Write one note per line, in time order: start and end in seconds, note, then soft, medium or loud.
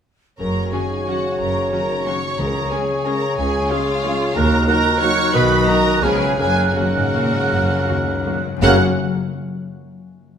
0.38 0.67 F#1 soft
0.38 1.38 F#2 soft
0.38 0.67 F#2 soft
0.38 2.35 C#3 soft
0.38 2.35 F#4 soft
0.38 0.70 A#4 soft
0.38 2.35 C#5 soft
0.38 0.70 A#5 medium
0.38 2.35 C#6 soft
0.55 0.89 C#3 soft
0.72 1.03 D#3 soft
0.72 0.86 F#3 soft
0.72 0.81 C#4 soft
0.72 0.86 C#4 soft
0.72 0.81 F#4 soft
0.72 1.08 G#4 soft
0.72 1.07 G#5 soft
0.91 1.54 C#3 soft
1.07 1.19 F#3 soft
1.07 2.05 A#3 soft
1.07 1.19 C#4 soft
1.07 1.15 C#4 soft
1.07 1.16 F#4 soft
1.07 1.39 F#4 soft
1.07 1.40 F#5 medium
1.24 2.22 C#5 soft
1.39 1.67 F#1 soft
1.39 2.40 F#2 soft
1.39 1.67 F#2 soft
1.39 1.72 A#4 soft
1.39 1.72 A#5 medium
1.55 1.88 C#3 soft
1.72 2.01 D#3 soft
1.72 1.84 F#3 soft
1.72 1.80 C#4 soft
1.72 1.85 C#4 soft
1.72 1.80 F#4 soft
1.72 2.06 A#4 medium
1.72 2.06 A#5 medium
1.89 2.37 C#3 soft
2.06 2.18 F#3 soft
2.06 2.40 A#3 soft
2.06 2.14 C#4 soft
2.06 2.18 C#4 soft
2.06 2.14 F#4 soft
2.06 2.39 C#5 medium
2.06 2.39 C#6 medium
2.38 2.66 C#2 medium
2.38 3.37 C#3 soft
2.38 2.85 C#3 medium
2.38 4.32 C#3 soft
2.38 4.32 G#4 soft
2.38 2.71 A#4 medium
2.38 4.31 C#5 soft
2.38 2.72 A#5 medium
2.38 4.32 C#6 soft
2.55 2.87 G#3 soft
2.71 2.84 G#3 soft
2.71 3.01 A#3 soft
2.71 2.79 C#4 soft
2.71 2.84 C#4 soft
2.71 2.79 G#4 soft
2.71 3.06 G#4 soft
2.71 3.06 G#5 medium
2.89 3.52 G#3 soft
3.06 3.17 G#3 soft
3.06 3.14 C#4 soft
3.06 3.17 C#4 soft
3.06 4.03 C#4 soft
3.06 3.14 G#4 soft
3.06 3.38 A#4 medium
3.06 3.38 A#5 medium
3.23 4.19 G#4 soft
3.37 3.65 C#2 medium
3.37 4.37 C#3 medium
3.37 3.69 G#4 medium
3.37 3.70 G#5 medium
3.53 3.86 G#3 soft
3.69 3.81 G#3 soft
3.69 3.99 A#3 soft
3.69 3.82 C#4 soft
3.69 3.78 C#4 medium
3.69 4.35 F4 medium
3.69 3.78 G#4 soft
3.69 4.35 F5 medium
3.87 4.36 G#3 soft
4.03 4.15 G#3 medium
4.03 4.15 C#4 medium
4.03 4.37 C#4 soft
4.03 4.12 C#4 soft
4.03 4.12 G#4 soft
4.20 4.37 G#4 medium
4.35 4.62 D#2 medium
4.35 5.35 D#3 medium
4.35 4.66 D#3 medium
4.35 4.65 F#4 medium
4.35 4.67 A#4 medium
4.35 4.65 A#4 medium
4.35 4.66 A#5 medium
4.35 4.66 F#6 medium
4.51 4.83 D#4 medium
4.67 5.33 D#3 medium
4.67 4.80 F#3 medium
4.67 4.76 A#3 medium
4.67 4.80 D#4 medium
4.67 4.97 F4 medium
4.67 5.32 F#4 medium
4.67 4.76 F#4 medium
4.67 5.35 A#4 medium
4.67 5.01 A#4 medium
4.67 5.01 A#5 medium
4.67 5.32 F#6 medium
4.85 6.04 D#4 medium
5.01 6.05 F#3 medium
5.01 5.14 F#3 medium
5.01 5.10 A#3 medium
5.01 5.14 D#4 medium
5.01 5.10 F#4 medium
5.01 5.34 C#5 medium
5.01 5.33 C#6 loud
5.18 5.35 A#4 medium
5.33 5.62 B1 medium
5.33 5.61 B2 medium
5.33 6.05 B2 medium
5.33 6.05 D#3 medium
5.33 6.01 F#4 medium
5.33 5.67 B4 medium
5.33 6.05 D#5 medium
5.33 5.68 B5 medium
5.33 6.01 F#6 medium
5.51 5.84 B3 medium
5.67 5.80 F#3 medium
5.67 5.80 D#4 medium
5.67 5.75 D#4 medium
5.67 5.75 F#4 medium
5.67 6.02 A#4 medium
5.67 6.03 A#5 loud
5.85 6.40 B3 soft
6.02 6.33 C#2 medium
6.02 6.40 C#3 medium
6.02 6.33 C#3 medium
6.02 6.38 C#3 medium
6.02 6.16 F3 medium
6.02 6.11 B3 medium
6.02 6.16 B3 medium
6.02 6.38 C#4 medium
6.02 6.11 F4 medium
6.02 6.38 G#4 medium
6.02 6.38 B4 medium
6.02 6.37 G#5 medium
6.02 6.39 F6 medium
6.21 6.40 F4 soft
6.21 7.32 C#5 soft
6.38 6.69 F#1 medium
6.38 7.50 F#2 medium
6.38 6.70 F#2 medium
6.38 6.75 C#3 medium
6.38 6.75 C#4 medium
6.38 6.75 G#4 medium
6.38 6.75 A#4 soft
6.38 6.67 G#5 medium
6.38 6.75 F#6 medium
6.57 6.94 C#3 soft
6.68 6.76 G#5 soft
6.75 6.94 F#2 medium
6.75 8.41 C#3 medium
6.75 7.09 D#3 soft
6.75 6.90 F#3 soft
6.75 6.89 A#3 soft
6.75 6.84 A#3 medium
6.75 8.41 C#4 medium
6.75 8.45 F#4 medium
6.75 6.84 F#4 soft
6.75 8.41 A#4 medium
6.75 8.45 F#5 medium
6.75 8.41 F#6 medium
6.96 7.14 G#2 medium
6.96 7.67 C#3 soft
7.15 7.33 A#2 medium
7.15 7.28 F#3 soft
7.15 8.26 A#3 soft
7.15 7.23 A#3 soft
7.15 7.28 A#3 soft
7.15 7.23 F#4 soft
7.33 7.51 G#2 medium
7.33 8.44 C#5 soft
7.50 7.80 F#1 medium
7.50 7.68 F#2 medium
7.50 8.56 F#2 medium
7.68 7.87 F2 soft
7.68 8.06 C#3 soft
7.87 8.07 D#2 medium
7.87 8.21 D#3 soft
7.87 8.02 F#3 soft
7.87 7.95 A#3 soft
7.87 8.02 A#3 soft
7.87 7.95 F#4 soft
8.07 8.26 C#2 soft
8.07 8.64 C#3 soft
8.26 8.45 A#2 medium
8.26 8.39 F#3 soft
8.26 8.39 A#3 soft
8.26 8.34 A#3 soft
8.26 8.61 A#3 soft
8.26 8.34 F#4 soft
8.45 8.62 G#2 medium
8.45 8.61 C#5 soft
8.57 8.81 F#2 medium
8.57 8.81 F#3 medium
8.61 8.81 F#1 medium
8.61 8.78 F#2 medium
8.61 8.81 F#2 medium
8.61 8.77 C#3 medium
8.61 8.76 F#3 medium
8.61 8.81 A#3 medium
8.61 8.76 A#3 medium
8.61 8.81 A#3 medium
8.61 8.76 C#4 medium
8.61 8.82 F#4 medium
8.61 8.81 F#4 medium
8.61 8.77 A#4 medium
8.61 8.81 F#5 medium
8.61 8.81 F#5 loud
8.61 8.82 F#6 medium
8.66 8.81 C#5 medium
8.66 8.81 F#5 medium